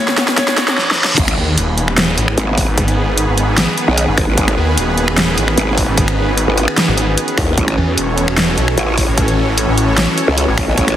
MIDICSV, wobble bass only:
0, 0, Header, 1, 2, 480
1, 0, Start_track
1, 0, Tempo, 400000
1, 1411, Time_signature, 4, 2, 24, 8
1, 13159, End_track
2, 0, Start_track
2, 0, Title_t, "Wobble bass"
2, 0, Program_c, 0, 39
2, 1411, Note_on_c, 0, 32, 92
2, 1632, Note_off_c, 0, 32, 0
2, 2851, Note_on_c, 0, 32, 89
2, 3196, Note_off_c, 0, 32, 0
2, 4655, Note_on_c, 0, 35, 100
2, 4876, Note_off_c, 0, 35, 0
2, 5011, Note_on_c, 0, 32, 94
2, 5116, Note_off_c, 0, 32, 0
2, 5135, Note_on_c, 0, 33, 97
2, 5232, Note_off_c, 0, 33, 0
2, 5251, Note_on_c, 0, 32, 95
2, 5472, Note_off_c, 0, 32, 0
2, 6691, Note_on_c, 0, 32, 91
2, 7036, Note_off_c, 0, 32, 0
2, 7775, Note_on_c, 0, 32, 97
2, 7995, Note_off_c, 0, 32, 0
2, 8851, Note_on_c, 0, 39, 97
2, 9072, Note_off_c, 0, 39, 0
2, 9091, Note_on_c, 0, 33, 90
2, 9312, Note_off_c, 0, 33, 0
2, 10530, Note_on_c, 0, 33, 99
2, 10875, Note_off_c, 0, 33, 0
2, 12336, Note_on_c, 0, 37, 98
2, 12556, Note_off_c, 0, 37, 0
2, 12691, Note_on_c, 0, 33, 94
2, 12796, Note_off_c, 0, 33, 0
2, 12815, Note_on_c, 0, 35, 95
2, 12912, Note_off_c, 0, 35, 0
2, 12931, Note_on_c, 0, 33, 94
2, 13152, Note_off_c, 0, 33, 0
2, 13159, End_track
0, 0, End_of_file